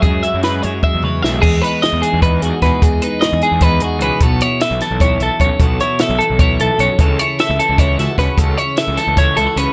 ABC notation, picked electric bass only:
X:1
M:7/8
L:1/16
Q:1/4=151
K:E
V:1 name="Picked electric bass" clef=bass
F,,2 z F,,3 F,,2 z E,,3 B,,,2 | E,,2 z3 E,, z E,,3 E,, z E,, z | E,,2 z3 E,, z E,,3 E,,2 C,, z | B,,,2 z3 B,,, z B,,,3 B,,, z B,,, z |
B,,,2 z3 B,,, z B,,,3 B,,, z B,,, z | C,,2 z3 C,, z C,,3 C,, z C,, z | C,,2 z3 C,, z C,,3 C,, z C,, z |]